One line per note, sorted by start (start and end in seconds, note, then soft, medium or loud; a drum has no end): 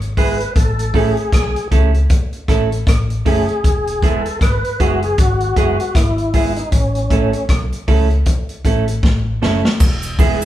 0.00 0.46 G#1 medium
0.00 closed hi-hat soft
0.17 0.36 G#3 medium
0.17 0.36 B3 medium
0.17 0.37 E4 medium
0.17 0.37 G#4 medium
0.17 0.53 B4 loud
0.17 kick medium
0.17 open hi-hat medium
0.40 closed hi-hat soft
0.56 0.89 A1 medium
0.56 0.96 A4 medium
0.56 kick loud
0.56 closed hi-hat medium
0.79 closed hi-hat medium
0.94 1.14 A1 medium
0.94 1.13 A3 medium
0.94 1.14 C#4 medium
0.94 1.14 E4 medium
0.94 1.68 G#4 medium
0.94 1.14 A4 loud
0.94 kick medium
0.94 open hi-hat medium
1.17 closed hi-hat soft
1.32 1.53 B1 medium
1.32 kick loud
1.32 cross-stick loud
1.32 closed hi-hat medium
1.56 closed hi-hat soft
1.71 2.05 C#2 medium
1.71 1.90 A3 medium
1.71 1.90 C#4 medium
1.71 1.91 E4 medium
1.71 1.91 A4 medium
1.71 kick medium
1.71 closed hi-hat medium
1.94 closed hi-hat soft
2.10 kick loud
2.10 closed hi-hat medium
2.33 closed hi-hat soft
2.48 2.82 A1 medium
2.48 2.67 A3 medium
2.48 2.68 C#4 medium
2.48 2.68 E4 medium
2.48 2.68 A4 medium
2.48 kick loud
2.48 cross-stick medium
2.48 closed hi-hat medium
2.72 closed hi-hat soft
2.87 3.21 A1 medium
2.87 kick loud
2.87 cross-stick loud
2.87 closed hi-hat loud
3.10 closed hi-hat soft
3.25 3.46 F#1 medium
3.25 3.45 A3 medium
3.25 3.45 C#4 medium
3.25 3.45 E4 medium
3.25 4.06 G#4 medium
3.25 3.45 A4 medium
3.25 kick medium
3.25 open hi-hat medium
3.49 closed hi-hat medium
3.64 3.98 E1 medium
3.64 kick loud
3.64 closed hi-hat medium
3.87 closed hi-hat medium
4.02 4.23 E1 medium
4.02 4.22 G#3 medium
4.02 4.22 B3 medium
4.02 4.22 E4 medium
4.02 4.22 G#4 medium
4.02 4.39 A4 medium
4.02 kick medium
4.02 closed hi-hat medium
4.26 closed hi-hat medium
4.41 4.61 G#1 medium
4.41 4.81 B4 loud
4.41 kick loud
4.41 cross-stick loud
4.41 closed hi-hat medium
4.65 closed hi-hat soft
4.80 5.14 F#1 medium
4.80 4.99 G#3 medium
4.80 4.99 B3 medium
4.80 4.99 E4 medium
4.80 5.02 F#4 medium
4.80 4.99 G#4 medium
4.80 kick medium
4.80 closed hi-hat medium
5.02 5.19 G#4 medium
5.02 closed hi-hat soft
5.18 5.52 G#1 medium
5.18 5.79 F#4 loud
5.18 kick loud
5.18 closed hi-hat loud
5.40 closed hi-hat soft
5.56 5.77 F#1 medium
5.56 5.76 G#3 medium
5.56 5.76 B3 medium
5.56 5.76 E4 medium
5.56 5.76 G#4 medium
5.56 kick medium
5.56 closed hi-hat medium
5.80 5.96 F#4 medium
5.80 closed hi-hat soft
5.95 6.62 G#1 medium
5.95 6.53 E4 medium
5.95 kick loud
5.95 cross-stick loud
5.95 closed hi-hat loud
6.18 closed hi-hat soft
6.33 6.53 G#3 medium
6.33 6.53 B3 medium
6.33 6.53 E4 medium
6.33 6.54 G#4 medium
6.33 kick medium
6.33 open hi-hat medium
6.56 6.71 D#4 medium
6.56 closed hi-hat soft
6.72 7.06 A1 medium
6.72 7.46 C#4 medium
6.72 kick loud
6.72 closed hi-hat medium
6.95 closed hi-hat soft
7.10 7.31 A1 medium
7.10 7.30 A3 medium
7.10 7.30 C#4 medium
7.10 7.30 E4 medium
7.10 7.30 A4 medium
7.10 kick loud
7.10 closed hi-hat medium
7.33 closed hi-hat soft
7.49 7.69 B1 medium
7.49 kick loud
7.49 cross-stick loud
7.49 closed hi-hat medium
7.72 closed hi-hat soft
7.88 8.22 C#2 medium
7.88 8.07 A3 medium
7.88 8.07 C#4 medium
7.88 8.07 E4 medium
7.88 8.07 A4 medium
7.88 kick medium
7.88 open hi-hat medium
8.10 closed hi-hat soft
8.26 kick loud
8.26 closed hi-hat medium
8.49 closed hi-hat soft
8.65 8.99 A1 medium
8.65 8.84 A3 medium
8.65 8.84 C#4 medium
8.65 8.84 E4 medium
8.65 8.85 A4 medium
8.65 kick medium
8.65 closed hi-hat medium
8.88 closed hi-hat medium
9.03 9.37 A1 medium
9.03 kick loud
9.03 snare medium
9.42 9.62 F#1 medium
9.42 9.61 A3 medium
9.42 9.61 C#4 medium
9.42 9.61 E4 medium
9.42 9.62 A4 medium
9.42 snare medium
9.65 snare medium
9.80 10.14 E1 loud
9.80 kick loud
9.80 crash loud
9.80 cabasa medium
10.03 closed hi-hat medium
10.03 cabasa medium
10.19 10.39 E1 loud
10.19 10.38 G#3 medium
10.19 10.38 B3 medium
10.19 10.38 E4 medium
10.19 10.39 G#4 medium
10.19 kick loud
10.19 open hi-hat medium
10.19 cabasa medium
10.42 cabasa medium